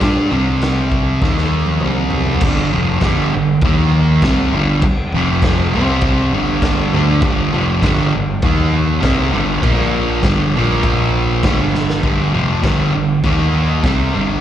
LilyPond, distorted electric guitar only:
\new Staff \with { instrumentName = "Distorted electric guitar" } { \clef bass \time 4/4 \key g \minor \tempo 4 = 100 <g d' g'>8 <c g c'>4. <ees bes ees'>4 <c g c'>4 | <g, d g>8 <f, c f>8 <g, d g>8 <g, d>8 <ees bes ees'>4 <c g c'>8 <g, d g>8 | r8 <f, c f>4 <c g c'>4 <g, d g>4 <d a d'>8 | <g, d g>8 <f, c f>8 <g, d g>8 <g, d>8 <ees bes ees'>4 <c g c'>8 <g, d g>8 |
<bes, f bes>4 <g, d g>8 <bes, f bes>4. <g, d g>4 | <g, d g>8 <f, c f>8 <g, d g>8 <g, d>8 <ees bes ees'>4 <c g c'>8 <g, d g>8 | }